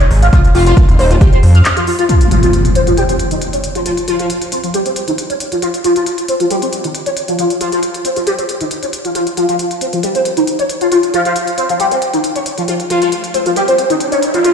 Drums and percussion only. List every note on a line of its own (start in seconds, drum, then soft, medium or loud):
0.00 closed hi-hat medium
0.11 open hi-hat medium
0.22 closed hi-hat medium
0.33 kick loud
0.33 closed hi-hat medium
0.44 closed hi-hat medium
0.55 open hi-hat loud
0.67 closed hi-hat medium
0.77 kick loud
0.77 closed hi-hat medium
0.89 closed hi-hat medium
0.99 open hi-hat medium
1.11 closed hi-hat soft
1.21 kick loud
1.21 closed hi-hat medium
1.33 closed hi-hat medium
1.43 open hi-hat loud
1.55 closed hi-hat medium
1.65 clap loud
1.65 closed hi-hat medium
1.77 closed hi-hat medium
1.87 open hi-hat medium
1.99 closed hi-hat medium
2.09 closed hi-hat medium
2.21 closed hi-hat medium
2.31 closed hi-hat medium
2.43 closed hi-hat medium
2.53 closed hi-hat medium
2.65 closed hi-hat medium
2.75 closed hi-hat medium
2.87 closed hi-hat soft
2.97 closed hi-hat medium
3.09 closed hi-hat medium
3.19 closed hi-hat medium
3.31 closed hi-hat medium
3.42 closed hi-hat medium
3.53 closed hi-hat medium
3.64 closed hi-hat medium
3.75 closed hi-hat medium
3.86 closed hi-hat medium
3.97 closed hi-hat medium
4.08 closed hi-hat medium
4.19 closed hi-hat medium
4.30 closed hi-hat medium
4.42 closed hi-hat medium
4.52 closed hi-hat medium
4.64 closed hi-hat soft
4.74 closed hi-hat medium
4.86 closed hi-hat medium
4.96 closed hi-hat medium
5.08 closed hi-hat medium
5.18 closed hi-hat medium
5.30 closed hi-hat medium
5.40 closed hi-hat medium
5.52 closed hi-hat medium
5.62 closed hi-hat medium
5.74 closed hi-hat medium
5.84 closed hi-hat medium
5.96 closed hi-hat medium
6.06 closed hi-hat medium
6.18 closed hi-hat medium
6.28 closed hi-hat medium
6.40 closed hi-hat soft
6.51 closed hi-hat medium
6.62 closed hi-hat medium
6.73 closed hi-hat medium
6.84 closed hi-hat medium
6.95 closed hi-hat medium
7.06 closed hi-hat medium
7.17 closed hi-hat medium
7.28 closed hi-hat medium
7.39 closed hi-hat medium
7.50 closed hi-hat soft
7.61 closed hi-hat medium
7.72 closed hi-hat medium
7.83 closed hi-hat medium
7.94 closed hi-hat medium
8.05 closed hi-hat medium
8.16 closed hi-hat soft
8.27 closed hi-hat medium
8.39 closed hi-hat soft
8.49 closed hi-hat medium
8.61 closed hi-hat soft
8.71 closed hi-hat medium
8.83 closed hi-hat soft
8.93 closed hi-hat medium
9.05 closed hi-hat soft
9.15 closed hi-hat medium
9.27 closed hi-hat soft
9.37 closed hi-hat medium
9.49 closed hi-hat soft
9.59 closed hi-hat medium
9.71 closed hi-hat soft
9.81 closed hi-hat medium
9.93 closed hi-hat soft
10.03 closed hi-hat medium
10.15 closed hi-hat soft
10.25 closed hi-hat medium
10.37 closed hi-hat soft
10.47 closed hi-hat medium
10.59 closed hi-hat soft
10.69 closed hi-hat medium
10.81 closed hi-hat soft
10.92 closed hi-hat medium
11.03 closed hi-hat soft
11.14 closed hi-hat medium
11.25 closed hi-hat soft
11.36 closed hi-hat medium
11.47 closed hi-hat soft
11.58 closed hi-hat medium
11.69 closed hi-hat soft
11.80 closed hi-hat medium
11.91 closed hi-hat medium
12.02 closed hi-hat medium
12.14 closed hi-hat soft
12.24 closed hi-hat medium
12.36 closed hi-hat soft
12.46 closed hi-hat medium
12.58 closed hi-hat soft
12.68 closed hi-hat medium
12.80 closed hi-hat soft
12.90 closed hi-hat medium
13.02 closed hi-hat medium
13.12 closed hi-hat medium
13.24 closed hi-hat medium
13.34 closed hi-hat medium
13.46 closed hi-hat soft
13.56 closed hi-hat medium
13.68 closed hi-hat medium
13.78 closed hi-hat medium
13.90 closed hi-hat medium
14.00 closed hi-hat medium
14.12 closed hi-hat soft
14.23 closed hi-hat medium
14.34 closed hi-hat soft
14.44 closed hi-hat medium